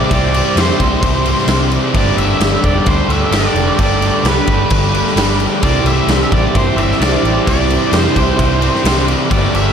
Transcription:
Already playing: distorted electric guitar G3 C4, overdriven electric guitar G3 G4, analog synth pad C5 E5 D6, lead electric guitar D5
0.09 fingered electric bass C2, distorted electric guitar C3 G3 C4, overdriven electric guitar C3 E3 G3, kick, crash
0.13 overdriven electric guitar C4 G4, lead electric guitar D5
0.34 crash
0.55 fingered electric bass F2, snare, crash
0.60 lead electric guitar C5
0.70 snare
0.79 fingered electric bass C2, overdriven electric guitar C3 E3 G3 C4 G4, kick, crash
1.01 fingered electric bass C2, distorted electric guitar C3 G3, kick, crash
1.05 distorted electric guitar C4
1.25 distorted electric guitar C3 G3 C4, crash
1.38 snare
1.47 fingered electric bass C2, distorted electric guitar C3 G3 C4, overdriven electric guitar C3 E3 G3 C4, snare, crash
1.51 overdriven electric guitar G4
1.71 crash
1.91 fingered electric bass G1, distorted electric guitar G2 D3, overdriven electric guitar G3, analog synth pad A4 G5, kick, crash
1.95 distorted electric guitar G3, overdriven electric guitar A3 D4 G4, lead electric guitar D5
2.17 fingered electric bass G1, lead electric guitar E5, crash
2.40 fingered electric bass G1, snare, crash
2.64 fingered electric bass F1, overdriven electric guitar A3 D4 G4, lead electric guitar D5, kick, crash
2.68 overdriven electric guitar G3
2.84 fingered electric bass D2, distorted electric guitar G2 D3 G3, lead electric guitar C5, kick, crash
3.08 fingered electric bass D2, distorted electric guitar D3 G3, lead electric guitar E5, crash
3.12 distorted electric guitar G2
3.31 fingered electric bass G1, distorted electric guitar G2 D3, overdriven electric guitar G3 A3 D4 G4, lead electric guitar D5, snare, crash
3.35 distorted electric guitar G3
3.54 fingered electric bass F1, crash
3.77 fingered electric bass G1, distorted electric guitar G2 D3 G3, overdriven electric guitar G3 A3 D4, lead electric guitar D5, kick, crash
3.82 overdriven electric guitar G4
4.02 crash
4.23 fingered electric bass C2, snare, crash
4.28 lead electric guitar B4
4.46 fingered electric bass G1, overdriven electric guitar G3 A3 D4 G4, kick, crash
4.69 fingered electric bass G1, distorted electric guitar G2 D3 G3, kick, crash
4.92 distorted electric guitar G2 D3 G3, crash
5.07 snare
5.14 fingered electric bass G1, distorted electric guitar G2 D3, overdriven electric guitar G3 A3 D4 G4, snare, crash
5.18 distorted electric guitar G3
5.40 crash
5.60 fingered electric bass C2, overdriven electric guitar C3 E3 G3 E4, distorted electric guitar C3 G3, analog synth pad C5 E5, lead electric guitar D5, kick, crash
5.64 distorted electric guitar C4, overdriven electric guitar G4
5.84 fingered electric bass C2, lead electric guitar E5, crash
6.07 fingered electric bass C2, snare, crash
6.21 snare
6.31 fingered electric bass A1, overdriven electric guitar C3 E3 G3 E4 G4, lead electric guitar D5, kick, crash
6.54 fingered electric bass G2, distorted electric guitar C3 G3 C4, lead electric guitar C5, kick, crash
6.76 fingered electric bass G1, distorted electric guitar C3 G3 C4, lead electric guitar E5, crash
6.91 snare
6.99 fingered electric bass C2, distorted electric guitar C3 G3 C4, overdriven electric guitar C3 E3 G3, lead electric guitar D5, snare, crash
7.03 overdriven electric guitar E4 G4
7.23 fingered electric bass A1, crash
7.45 fingered electric bass C2, distorted electric guitar C3 G3 C4, overdriven electric guitar C3 E3 G3 E4, lead electric guitar D5, kick, crash
7.49 overdriven electric guitar G4
7.70 crash
7.92 fingered electric bass F2, lead electric guitar C5, snare, crash
8.06 snare
8.15 fingered electric bass C2, overdriven electric guitar C3 E3 G3 E4 G4, kick, crash
8.37 fingered electric bass C2, distorted electric guitar C3 G3 C4, kick, crash
8.61 distorted electric guitar C3 G3 C4, crash
8.75 snare
8.83 fingered electric bass C2, distorted electric guitar C3 G3 C4, overdriven electric guitar C3 E3 G3 E4, snare, crash
8.88 overdriven electric guitar G4
9.08 crash
9.29 fingered electric bass G1, distorted electric guitar G2 D3 G3, overdriven electric guitar G3 A3 D4 G4, analog synth pad A4 G5 D6, lead electric guitar D5, kick, crash
9.53 fingered electric bass G1, lead electric guitar E5, crash

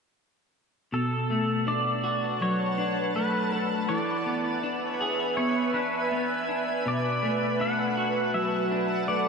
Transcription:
0.92 clean electric guitar B2, pedal steel guitar A4, ambient pad B4 F#5 A5
1.30 clean electric guitar A3
1.67 clean electric guitar D4, pedal steel guitar D5
2.04 clean electric guitar F#4
2.41 clean electric guitar F#3, pedal steel guitar C#5
2.78 clean electric guitar D4
3.15 clean electric guitar A3, pedal steel guitar B4
3.52 clean electric guitar D4, pedal steel guitar A4
3.89 clean electric guitar E3, pedal steel guitar D5, ambient pad E5 G#5
4.26 clean electric guitar B3
4.63 clean electric guitar D4
4.88 pedal steel guitar C#5
5.01 clean electric guitar G#4
5.37 clean electric guitar B3, pedal steel guitar C#5
5.74 clean electric guitar D4, pedal steel guitar B4
6.12 clean electric guitar B3
6.49 clean electric guitar D4
6.86 clean electric guitar B2, pedal steel guitar D5, ambient pad F#5 A5
7.23 clean electric guitar A3
7.60 clean electric guitar D4, pedal steel guitar F#5
7.97 clean electric guitar F#4
8.34 clean electric guitar F#3, pedal steel guitar E5
8.71 clean electric guitar D4
9.08 clean electric guitar A3, pedal steel guitar D5

